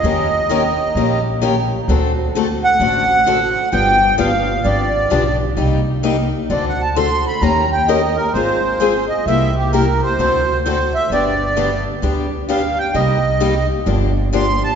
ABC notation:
X:1
M:4/4
L:1/8
Q:"Swing" 1/4=130
K:Cm
V:1 name="Accordion"
e4- e z3 | z3 ^f4- f | g2 f2 d3 z | z4 (3d ^f =a c' =b |
b g e B c3 e | =e G B c3 c e | d3 z3 f g | e3 z3 c' =a |]
V:2 name="Steel-string acoustic guitar"
[E,B,_DGB] z [E,B,DGB] z [E,B,DGB] z [E,B,DGB] z | [D,=A,C^F=A] z [D,A,CFA] z [D,A,CFA] z [D,A,CFA] z | [D,F,=B,DG] z [D,F,B,DG] z [D,F,B,DG] z [D,F,B,DG] z | [C,G,B,EG] z [C,G,B,EG] z [D,=A,C^F=A] z [D,A,CFA] z |
[E,B,_DGB] z [E,B,DGB] z [A,CFA] z [A,CFA] z | [C,G,B,=EG] z [C,G,B,EG] z [D,=A,C^F=A] z [D,A,CFA] z | [D,G,=B,DG] z [D,G,B,DG] z [D,G,B,DG] z [D,G,B,DG] z | [C,G,B,EG] z [C,G,B,EG] z [D,F,B,DG] z [D,F,B,DG] z |]
V:3 name="Upright bass" clef=bass
E,,4 B,,,4 | D,,4 =A,,,4 | G,,,2 G,,,2 A,,,2 =B,,,2 | C,,4 D,,4 |
E,,4 A,,,4 | C,,4 D,,4 | G,,,4 D,,4 | C,,4 G,,,4 |]